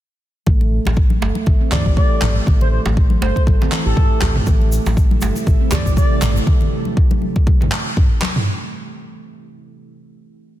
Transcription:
0.46 A1 A3, kick, low conga
0.61 muted conga
0.85 A1, djembe slap, high conga
0.97 kick, muted conga
1.10 high conga
1.22 G1 A3, djembe slap, djembe tone
1.35 A3, muted conga
1.46 A1, kick, low conga
1.61 C4
1.72 E3 D5, clap, mid tom, muted conga, djembe tone, djembe bass, low conga
1.86 A1 G4, kick, high conga
1.97 A3 D5, kick
2.22 A1, clap, mid tom, muted conga, high conga
2.36 A3
2.46 A1 A3, kick, djembe tone, low conga
2.61 C5, muted conga, low conga
2.72 C5
2.86 A1, djembe slap, high conga
2.97 kick, muted conga
3.10 high conga
3.22 G1 A3 C5, djembe slap, high conga, djembe tone
3.36 A3, kick, muted conga
3.47 A1, kick, high conga
3.61 C4, djembe slap, low conga
3.72 E3, clap, muted conga
3.86 A1 G4 A4
3.97 A3, kick, mid tom
4.22 A1, clap, muted conga, high conga, djembe bass
4.36 A3, mid tom
4.47 A1 C3 G3 A3 E4, kick, low conga, shaker
4.61 muted conga
4.72 shaker
4.86 A1, djembe slap, high conga, shaker
4.97 kick, muted conga, shaker
5.11 high conga
5.21 G1 A3, djembe slap, djembe tone, shaker
5.36 A3, muted conga, shaker
5.47 A1, kick, low conga, shaker
5.61 C4
5.71 E3 D5, clap, mid tom, muted conga, djembe tone, djembe bass, low conga, shaker
5.86 A1 G4, kick, high conga, shaker
5.97 A3 D5, kick, shaker
6.22 A1, clap, mid tom, muted conga, high conga, shaker
6.36 A3, shaker
6.47 kick, low conga
6.61 muted conga, low conga
6.85 high conga
6.97 kick, muted conga
7.11 high conga
7.22 high conga
7.36 kick, muted conga
7.47 kick, high conga
7.61 mid tom, low conga
7.72 clap, muted conga
7.97 kick, mid tom
8.22 clap, muted conga, high conga
8.36 mid tom

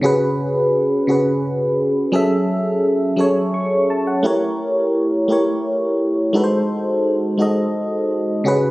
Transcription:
0.01 C#3 C#4 F#4 G#4
0.06 B4
1.07 C#3 C#4 F#4 G#4
1.11 B4
2.12 F#3 C#4 G#4 A4 E5
3.16 F#3 C#4 G#4 A4
3.20 C#5
3.54 C#6
3.90 A5
4.07 F#5
4.23 A3 E4 G4 A#4
4.27 C#5
5.28 A3 E4 G4 A#4
5.32 C#5
6.33 G#3 D#4 F#4 A4
6.37 B4
6.44 C5
7.38 G#3 D#4 F#4 A4
7.42 D#5
8.44 C#3 C#4 F#4 G#4
8.48 B4

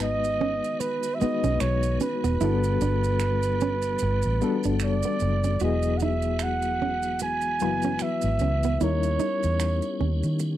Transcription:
Already playing: G#1 D#3 G#3 B3 D#4 F#4 B4
0.00 D#5, finger snap, maracas
0.24 maracas
0.41 C#4
0.64 maracas
0.80 B4, muted nylon-string guitar stroke, maracas
1.03 maracas
1.15 E5
1.20 G#3 B3 D#4 F#4 D#5, muted fingered electric bass stroke, maracas
1.24 B4
1.44 B1 C#4, maracas
1.60 B1 C#5, finger snap, muted nylon-string guitar stroke, maracas
1.83 maracas
2.00 C#4 B4, maracas
2.24 E1 B3, maracas
2.41 G1 D3 G3 B3 D4 E4 F#4 A4, maracas
2.64 maracas
2.81 G1 D4, maracas
3.04 maracas
3.20 finger snap, maracas
3.43 maracas
3.61 C#4, maracas
3.82 maracas
3.99 G1, maracas
4.03 muted nylon-string guitar stroke
4.22 A1, maracas
4.41 G3 B3 D4 F#4 A4, maracas
4.63 G1 D4, maracas
4.80 F#1 D5, finger snap, maracas
5.03 B3, maracas
5.20 F#1, muted nylon-string guitar stroke, maracas
5.44 C#4, maracas
5.60 E1 E3 F#3 G#3 B3 F#4 D#5, maracas
5.64 E4 G#4
5.82 maracas
5.97 F#5, maracas
6.02 D#4 E5
6.22 maracas
6.39 F#5, finger snap, maracas
6.62 maracas
6.82 C#4
7.03 maracas
7.19 G#5, muted nylon-string guitar stroke, maracas
7.41 maracas
7.60 F#1 F#3 B3 E4 F#4 B4, maracas
7.82 C#4, maracas
7.99 E5, finger snap, muted nylon-string guitar stroke, maracas
8.21 G#1, maracas
8.39 C#2 C#4, maracas
8.63 B3, maracas
8.81 D#2 G3 C#4 D#4 E4 G4 A#4 C#5, maracas
9.03 maracas
9.19 D#4, maracas
9.43 E2, maracas
9.60 finger snap, maracas
9.82 maracas
10.01 D#2 C#4
10.23 D#3, maracas
10.39 muted nylon-string guitar stroke, maracas

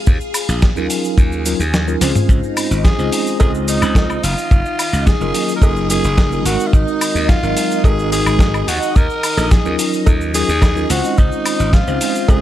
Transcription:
Already playing: G#4 F5
0.07 D#2, kick, shaker
0.21 shaker
0.34 open hi-hat, high woodblock, shaker
0.49 A#1, shaker
0.62 kick, snare, shaker
0.75 D#2 F#3 C#4 D#4 F4 A#4, shaker
0.90 open hi-hat, shaker
1.04 shaker
1.18 D#2, kick, shaker
1.32 shaker
1.45 F#3 C#4 D#4 F4 A#4, open hi-hat, shaker
1.60 D#2, shaker
1.74 snare, shaker
1.87 F#3 C#4 D#4 F4 A#4, shaker
2.00 C#2 G#3 C4 C#4 F4 C5, snare, open hi-hat, shaker
2.15 mid tom, shaker
2.29 C#2 D#4 D#5, kick, shaker
2.43 shaker
2.57 open hi-hat, high woodblock, shaker
2.71 G#1, shaker
2.84 G#4, kick, snare, shaker
2.98 C#2 G#3 C4 C#4 F4 C5, shaker
3.12 open hi-hat, shaker
3.27 shaker
3.39 C#2 G#3 C4 C#4 F4 G#4 C5, kick, cowbell, shaker
3.55 shaker
3.68 D#4, open hi-hat, shaker
3.82 C#2, high woodblock, shaker
3.95 kick, snare, cowbell, shaker
4.10 high woodblock, shaker
4.23 F#1 F4, open hi-hat, shaker
4.38 shaker
4.51 F#1, kick, shaker
4.65 shaker
4.79 open hi-hat, high woodblock, shaker
4.93 C#2, shaker
5.06 G#4, kick, snare, shaker
5.20 F#1 F#3 A#3 C#4 F4 A#4, shaker
5.34 open hi-hat, shaker
5.49 shaker
5.56 A#4
5.62 F#1 G#4, kick, cowbell, shaker
5.76 shaker
5.90 F#3 A#3 C#4 F4 G#4 A#4, open hi-hat, shaker
6.04 F#1, shaker
6.18 kick, snare, cowbell, shaker
6.32 F#3 A#3 C#4 F4 A#4, shaker
6.45 G#1 G#3 C4 D#4 F#4 A#4, open hi-hat, shaker
6.60 shaker
6.67 F4
6.73 G#1 D#4, kick, shaker
6.88 shaker
7.01 open hi-hat, high woodblock, shaker
7.15 D#2, shaker
7.29 F4, kick, snare, shaker
7.43 G#1 F#3 G#3 C4 D#4 A#4, shaker
7.57 open hi-hat, shaker
7.71 shaker
7.84 G#1 G#3 C4 D#4 F#4 G#4 A#4, kick, cowbell, shaker
7.99 shaker
8.12 G#4, open hi-hat, shaker
8.26 G#1, high woodblock, shaker
8.39 kick, snare, cowbell, shaker
8.54 high woodblock, shaker
8.68 D#2 F#4, open hi-hat, shaker
8.82 shaker
8.96 D#2 A#4, kick, shaker
9.10 shaker
9.23 open hi-hat, high woodblock, shaker
9.37 A#1, cowbell, shaker
9.51 G#4, kick, snare, shaker
9.64 D#2 F#3 C#4 D#4 F4 A#4, shaker
9.79 open hi-hat, shaker
9.93 shaker
10.06 D#2, kick, cowbell, shaker
10.21 shaker
10.34 F#3 C#4 D#4 F4 G#4 A#4, open hi-hat, shaker
10.49 D#2, shaker
10.62 kick, snare, cowbell, high woodblock, shaker
10.76 F#3 C#4 D#4 F4 A#4, shaker
10.89 C#2 G#3 C4 C#4 F4 F#4 C5, open hi-hat, shaker
11.04 shaker
11.18 C#2 D#4 D#5, kick, shaker
11.32 shaker
11.46 open hi-hat, high woodblock, shaker
11.60 G#1, shaker
11.73 F4, kick, snare, shaker
11.87 C#2 G#3 C4 C#4 F4 C5, shaker
12.01 open hi-hat, shaker
12.15 shaker
12.28 C#2 G#3 C4 C#4 F4 G#4 C5, kick, cowbell, shaker

